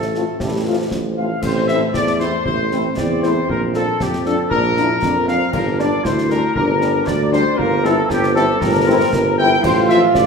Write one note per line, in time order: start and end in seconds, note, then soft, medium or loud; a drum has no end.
0.00 0.27 A1 medium
0.00 0.88 A3 medium
0.00 0.87 A4 medium
0.00 snare soft
0.14 0.39 A3 medium
0.14 0.25 A3 medium
0.14 0.24 C4 soft
0.14 0.24 F4 soft
0.14 snare soft
0.40 0.83 A1 medium
0.40 0.65 G3 medium
0.40 concert bass drum medium
0.40 snare medium
0.66 0.77 F3 medium
0.66 0.76 A3 medium
0.66 0.76 C4 medium
0.66 0.76 F4 medium
0.91 1.35 A1 medium
0.91 1.40 F3 medium
0.91 concert bass drum medium
0.91 snare medium
1.17 1.27 A3 soft
1.17 1.28 C4 medium
1.17 1.27 F4 soft
1.17 1.41 F5 medium
1.17 1.23 F5 medium
1.42 1.86 A1 medium
1.42 1.91 C4 medium
1.42 1.67 C5 medium
1.42 1.69 C5 loud
1.42 concert bass drum medium
1.42 crash medium
1.68 1.79 A3 medium
1.68 1.79 C4 medium
1.68 1.79 E4 medium
1.68 1.80 E5 loud
1.68 1.94 E5 medium
1.68 snare medium
1.94 2.37 E2 medium
1.94 2.43 A3 medium
1.94 2.18 D5 loud
1.94 2.00 D5 medium
1.94 concert bass drum medium
1.94 snare medium
2.07 snare medium
2.18 2.30 A3 medium
2.18 2.30 C4 medium
2.18 2.30 E4 medium
2.18 2.24 C5 medium
2.18 2.44 C5 loud
2.18 snare medium
2.44 2.89 A1 medium
2.44 2.57 E4 medium
2.44 2.93 C5 medium
2.44 2.94 C5 loud
2.44 concert bass drum medium
2.71 2.81 A3 medium
2.71 4.47 C4 medium
2.71 2.81 C4 medium
2.71 2.82 E4 medium
2.71 snare soft
2.95 3.40 E2 medium
2.95 3.01 D5 medium
2.95 3.23 D5 medium
2.95 concert bass drum medium
2.95 snare medium
3.22 3.33 A3 medium
3.22 3.33 C4 medium
3.22 3.33 E4 medium
3.22 3.28 C5 medium
3.22 3.48 C5 loud
3.22 snare soft
3.48 3.91 A#1 medium
3.48 3.55 A#4 medium
3.48 3.61 A#4 loud
3.48 concert bass drum medium
3.74 3.84 F3 medium
3.74 3.84 D4 medium
3.74 3.98 A4 medium
3.74 3.99 A4 medium
3.74 snare medium
4.00 4.43 F2 medium
4.00 4.06 G4 medium
4.00 4.27 G4 medium
4.00 concert bass drum medium
4.00 snare medium
4.13 snare medium
4.25 4.35 F3 medium
4.25 4.35 D4 medium
4.25 4.49 A4 medium
4.25 4.37 A4 medium
4.25 snare soft
4.49 4.94 A#1 medium
4.49 4.62 D4 medium
4.49 5.27 A#4 medium
4.49 5.24 A#4 loud
4.49 concert bass drum medium
4.77 4.87 F3 medium
4.77 4.87 D4 medium
4.77 4.89 E4 medium
4.77 snare medium
5.02 5.45 F2 medium
5.02 5.15 D4 medium
5.02 concert bass drum medium
5.02 snare medium
5.27 5.38 F3 medium
5.27 5.52 C4 medium
5.27 5.38 D4 medium
5.27 5.54 F5 medium
5.27 5.52 F5 loud
5.27 snare soft
5.52 5.96 G1 medium
5.52 6.05 D4 medium
5.52 5.77 A#4 loud
5.52 5.59 A#4 medium
5.52 concert bass drum medium
5.52 crash soft
5.77 5.89 G3 medium
5.77 5.89 D4 medium
5.77 5.83 D5 medium
5.77 6.05 D5 loud
5.77 snare medium
6.04 6.48 D2 medium
6.04 6.52 E4 medium
6.04 6.30 C5 loud
6.04 6.10 C5 medium
6.04 concert bass drum medium
6.04 snare medium
6.18 snare medium
6.29 6.40 G3 medium
6.29 6.40 D4 medium
6.29 6.35 A#4 medium
6.29 6.54 A#4 loud
6.29 snare soft
6.55 6.99 G1 loud
6.55 6.68 D4 medium
6.55 7.04 A#4 loud
6.55 7.04 A#4 medium
6.55 concert bass drum medium
6.81 6.91 G3 medium
6.81 6.91 D4 medium
6.81 7.55 D4 medium
6.81 snare medium
7.06 7.46 D2 loud
7.06 7.32 D5 medium
7.06 7.33 D5 loud
7.06 concert bass drum medium
7.06 snare medium
7.32 7.42 G3 medium
7.32 7.42 D4 medium
7.32 7.57 C5 loud
7.32 7.57 C5 medium
7.32 snare soft
7.57 8.02 G1 loud
7.57 8.06 A#3 medium
7.57 7.84 A#4 medium
7.57 7.84 A#4 loud
7.57 concert bass drum medium
7.84 7.93 G3 medium
7.84 7.94 C4 medium
7.84 7.93 E4 medium
7.84 8.08 A4 medium
7.84 8.11 A4 loud
7.84 snare medium
8.09 8.53 G1 loud
8.09 8.61 C4 medium
8.09 8.36 G4 medium
8.09 8.34 G4 medium
8.09 concert bass drum medium
8.09 snare medium
8.23 snare soft
8.35 8.45 G3 medium
8.35 8.45 C4 medium
8.35 8.45 E4 medium
8.35 8.59 A4 loud
8.35 8.59 A4 medium
8.35 snare medium
8.60 9.04 G1 loud
8.60 8.87 D4 medium
8.60 9.38 A#4 loud
8.60 9.34 A#4 loud
8.60 concert bass drum loud
8.60 snare medium
8.86 8.96 G3 medium
8.86 9.11 C4 medium
8.86 8.96 C4 medium
8.86 8.96 E4 medium
9.13 9.56 G1 loud
9.13 9.25 D4 medium
9.13 concert bass drum medium
9.13 snare medium
9.38 9.48 G3 medium
9.38 9.48 C4 medium
9.38 9.62 E4 medium
9.38 9.48 E4 medium
9.38 9.62 G5 loud
9.38 9.64 G5 loud
9.63 10.06 A1 loud
9.63 10.27 F4 loud
9.63 9.89 C5 loud
9.63 9.75 C5 loud
9.63 concert bass drum medium
9.63 crash medium
9.89 9.99 F3 medium
9.89 9.99 C4 medium
9.89 9.99 F4 medium
9.89 10.01 E5 loud
9.89 9.95 E5 medium
9.89 snare medium
10.13 10.27 A1 loud
10.13 10.19 D5 medium
10.13 10.26 D5 loud
10.13 concert bass drum medium
10.13 snare medium